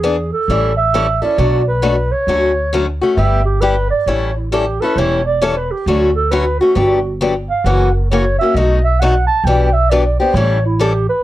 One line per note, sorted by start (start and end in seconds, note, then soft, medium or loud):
0.00 0.30 E2 medium
0.00 0.15 E3 medium
0.00 0.15 B3 medium
0.00 0.16 D4 medium
0.00 0.30 G#4 medium
0.04 0.16 G#4 medium
0.32 0.77 A4 medium
0.48 1.20 A1 medium
0.48 0.71 E3 medium
0.48 0.71 G3 medium
0.48 0.72 C#4 medium
0.48 0.72 E4 medium
0.48 0.72 A4 medium
0.77 1.24 E5 loud
0.94 1.06 E3 medium
0.94 1.06 G3 medium
0.94 1.06 C#4 medium
0.94 1.06 E4 medium
0.94 1.06 A4 medium
1.22 1.39 C#4 soft
1.22 1.38 E4 soft
1.22 1.38 A4 soft
1.22 1.67 D5 medium
1.38 2.10 B1 medium
1.38 1.61 B2 medium
1.38 1.61 F#3 medium
1.38 1.61 A3 medium
1.38 1.61 D4 medium
1.38 1.61 F#4 medium
1.68 2.13 B4 medium
1.82 1.95 B2 medium
1.82 1.95 F#3 medium
1.82 1.95 A3 medium
1.82 1.95 D4 medium
1.82 1.95 F#4 medium
2.12 2.73 C#5 medium
2.27 2.99 D2 medium
2.27 2.50 D3 medium
2.27 2.51 F#3 medium
2.27 2.51 A3 medium
2.27 2.51 C#4 medium
2.27 2.51 F#4 medium
2.73 2.85 D3 medium
2.73 2.85 F#3 medium
2.73 2.85 A3 medium
2.73 2.85 C#4 medium
2.73 2.85 F#4 medium
3.01 3.17 A3 soft
3.01 3.18 C#4 soft
3.01 3.17 F#4 medium
3.17 3.89 G1 medium
3.17 3.40 G3 medium
3.17 3.40 B3 medium
3.17 3.41 E4 medium
3.17 3.41 G4 medium
3.17 3.45 E5 medium
3.46 3.63 G4 medium
3.61 3.74 G3 medium
3.61 3.74 B3 medium
3.61 3.74 E4 medium
3.61 3.75 G4 medium
3.61 3.90 B4 medium
3.90 4.09 D5 medium
4.06 4.79 A1 medium
4.06 4.30 E3 medium
4.06 4.30 G3 medium
4.06 4.30 C#4 medium
4.06 4.30 E4 medium
4.06 4.30 A4 medium
4.06 4.36 C#5 medium
4.37 4.53 E4 soft
4.51 4.64 E3 medium
4.51 4.64 G3 medium
4.51 4.64 C#4 medium
4.51 4.65 E4 medium
4.51 4.83 G4 medium
4.51 4.65 A4 medium
4.81 4.97 C#4 soft
4.81 4.97 E4 soft
4.81 4.97 A4 soft
4.81 5.00 B4 medium
4.96 5.68 E1 medium
4.96 5.20 E3 medium
4.96 5.20 G3 medium
4.96 5.20 C#4 medium
4.96 5.20 E4 medium
4.96 5.20 A4 medium
4.96 5.25 C#5 medium
5.25 5.43 D5 medium
5.41 5.54 E3 medium
5.41 5.54 G3 medium
5.41 5.54 C#4 medium
5.41 5.54 E4 medium
5.41 5.54 A4 medium
5.41 5.58 C#5 medium
5.57 5.73 B4 medium
5.71 5.89 G4 medium
5.86 6.58 D2 medium
5.86 6.09 D3 medium
5.86 6.09 F#3 medium
5.86 6.10 A3 medium
5.86 6.10 C#4 medium
5.86 6.15 F#4 medium
5.86 6.10 F#4 medium
6.16 6.33 A4 medium
6.31 6.43 D3 medium
6.31 6.44 F#3 medium
6.31 6.44 A3 medium
6.31 6.44 C#4 medium
6.31 6.44 F#4 medium
6.31 6.59 B4 medium
6.60 6.75 A3 soft
6.60 6.76 C#4 soft
6.60 7.17 F#4 medium
6.60 6.76 F#4 soft
6.75 7.48 G1 medium
6.75 6.98 D3 medium
6.75 6.98 F#3 medium
6.75 6.98 B3 medium
6.75 6.98 D4 medium
6.75 6.99 G4 medium
7.21 7.33 D3 medium
7.21 7.33 F#3 medium
7.21 7.33 B3 medium
7.21 7.33 D4 medium
7.21 7.33 G4 medium
7.50 7.67 F5 medium
7.64 8.37 F#1 medium
7.64 7.88 C#3 medium
7.64 7.88 E3 medium
7.64 7.88 A#3 medium
7.64 7.88 C#4 medium
7.64 7.89 F#4 medium
7.64 7.94 F#5 medium
7.95 8.11 A#4 medium
8.11 8.23 C#3 medium
8.11 8.23 E3 medium
8.11 8.23 A#3 medium
8.11 8.24 C#4 medium
8.11 8.24 F#4 medium
8.11 8.38 C#5 medium
8.39 8.56 C#4 soft
8.39 8.56 F#4 soft
8.39 8.57 E5 medium
8.43 8.56 A#3 soft
8.54 9.26 B1 medium
8.54 8.78 B2 medium
8.54 8.78 F#3 medium
8.54 8.78 A3 medium
8.54 8.78 D#4 medium
8.54 8.78 F#4 medium
8.54 8.84 D#5 medium
8.84 9.01 E5 medium
9.00 9.13 B2 medium
9.00 9.13 F#3 medium
9.00 9.13 A3 medium
9.00 9.13 D#4 medium
9.00 9.13 F#4 medium
9.00 9.27 F#5 medium
9.27 9.47 A5 loud
9.44 10.16 B1 medium
9.44 9.68 B2 medium
9.44 9.68 E3 medium
9.44 9.68 B3 medium
9.44 9.68 G4 medium
9.44 9.75 G5 medium
9.48 9.69 D4 medium
9.73 9.92 E5 medium
9.90 10.02 B2 medium
9.90 10.02 E3 medium
9.90 10.03 B3 medium
9.90 10.03 D4 medium
9.90 10.03 G4 medium
9.90 10.19 D5 medium
10.20 10.35 B3 soft
10.20 10.35 D4 soft
10.20 10.34 G4 medium
10.20 10.37 C5 medium
10.34 11.06 A1 medium
10.34 10.57 E3 medium
10.34 10.58 G3 medium
10.34 10.58 C#4 medium
10.34 10.58 E4 medium
10.34 10.58 A4 medium
10.34 10.64 C#5 medium
10.66 10.82 E4 medium
10.79 10.91 E3 medium
10.79 10.92 G3 medium
10.79 10.92 C#4 medium
10.79 10.92 E4 medium
10.79 11.08 G4 medium
10.79 10.92 A4 medium
11.09 11.23 B4 medium